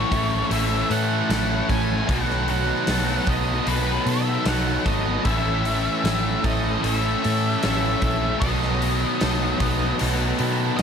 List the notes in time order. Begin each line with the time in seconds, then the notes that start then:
Already playing: A2 E3 A3 C#4 E4 A4 C#5
0.11 A1 A2 E3 A3 C#4 E4 A4, kick, open hi-hat
0.50 A1 A2 E3 A3 C#4 E4 A4 E5, open hi-hat
0.89 A2 E3 A3 C#4 E4 A4 F#5, open hi-hat
1.29 A1 A2 E3 A3 C#4 E4 A4, snare, open hi-hat
1.69 A1 A3 C#4 E4 A4 G#5, kick, open hi-hat
2.09 B1 B2 D#3 F#3 B3 D#4 A4 F#5, kick, open hi-hat
2.30 snare
2.48 F#3 F#5, open hi-hat
2.87 B1 F#3 A3 B3 D#4 A4, snare, open hi-hat
3.27 B1 B2 F#3 B3 D#4 F#4 A4 D#5, kick, open hi-hat
3.66 B1 B2 D#3 F#3 A3 B3 D#4 A4 B4, open hi-hat
4.06 B2 F#3 B3 D#4 A4 E5, open hi-hat
4.44 B1 B2 F#3 B3 D#4 A4 F#5, snare, open hi-hat
4.49 B3
4.84 G#1 F#3 A3 B3 D#4 A4 D#5, kick, open hi-hat
5.25 A1 A2 E3 A3 C#4 E4 A4 E5, kick, open hi-hat
5.65 E3, open hi-hat
6.04 A1 A3 C#4 E4 A4, snare, open hi-hat
6.44 A1 A2 E3 A3 C#4 E4 A4 D#5, kick, open hi-hat
6.82 A1 A2 E3 A3 C#4 E4 A4 D#5, open hi-hat
6.93 E5
7.22 A2 E3 A3 C#4 E4 A4, open hi-hat
7.61 A1 A2 E3 A3 C#4 E4 A4 E5, snare, open hi-hat
8.00 A#1 A3 C#4 E4 A4, kick, open hi-hat
8.40 B1 B2 D#3 F#3 B3 D#4 A4 D#5, kick, open hi-hat
8.62 snare
8.82 F#3, open hi-hat
9.21 B1 F#3 A3 B3 D#4 A4, snare, open hi-hat
9.60 B1 B2 F#3 B3 D#4 F#4 A4, kick, open hi-hat
9.99 B1 B2 D#3 F#3 A3 B3 D#4 A4, open hi-hat
10.38 B2 F#3 B3 D#4 A4, open hi-hat
10.77 B1 B2 D#5, open hi-hat